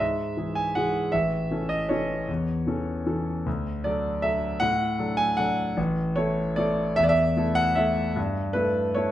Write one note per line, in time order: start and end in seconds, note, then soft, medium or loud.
0.00 0.36 G#2 medium
0.00 0.56 E5 medium
0.37 0.72 E3 soft
0.37 0.72 G#3 soft
0.37 0.73 G#4 soft
0.55 0.76 G#5 medium
0.75 1.10 E3 soft
0.75 1.10 G#3 soft
0.75 1.10 G#4 soft
0.75 1.13 F#5 medium
1.12 1.50 A1 medium
1.12 1.70 E5 medium
1.51 1.86 E3 soft
1.51 1.87 C#4 soft
1.51 1.87 A4 soft
1.69 1.90 D#5 medium
1.89 2.25 E3 soft
1.89 2.25 C#4 soft
1.89 2.25 A4 soft
1.89 3.45 C#5 medium
2.28 2.65 E2 medium
2.67 3.02 E3 soft
2.67 3.02 C#4 soft
2.67 3.03 A4 soft
3.07 3.42 E3 soft
3.07 3.42 C#4 soft
3.07 3.42 A4 soft
3.46 3.84 D2 medium
3.84 4.20 F#3 soft
3.84 4.20 D4 soft
3.84 4.20 A4 soft
3.84 4.23 D5 medium
4.22 4.57 F#3 soft
4.22 4.58 D4 soft
4.22 4.58 A4 medium
4.22 4.61 E5 medium
4.60 4.98 A2 medium
4.60 5.18 F#5 loud
4.99 5.34 F#3 soft
4.99 5.34 D4 soft
4.99 5.35 A4 soft
5.17 5.37 G#5 loud
5.37 5.74 F#3 soft
5.37 5.74 D4 soft
5.37 5.74 A4 soft
5.37 5.77 F#5 medium
5.77 6.15 A1 medium
6.16 6.53 A3 soft
6.16 6.53 E4 soft
6.16 6.54 A4 soft
6.16 6.57 C#5 medium
6.56 6.93 A3 soft
6.56 6.94 E4 medium
6.56 6.94 A4 medium
6.56 6.97 D5 medium
6.96 7.36 E2 medium
6.96 7.03 E5 loud
7.03 7.10 D5 medium
7.09 7.57 E5 loud
7.37 7.74 A3 soft
7.37 7.74 E4 medium
7.37 7.74 A4 medium
7.55 7.77 F#5 loud
7.75 8.13 A3 soft
7.75 8.13 E4 medium
7.75 8.13 A4 soft
7.75 8.16 E5 medium
8.16 8.54 G2 medium
8.53 8.93 A3 soft
8.53 8.93 E4 soft
8.53 8.93 A4 soft
8.53 8.96 B4 medium
8.95 9.12 A3 soft
8.95 9.12 E4 soft
8.95 9.12 A4 medium
8.95 9.12 C#5 medium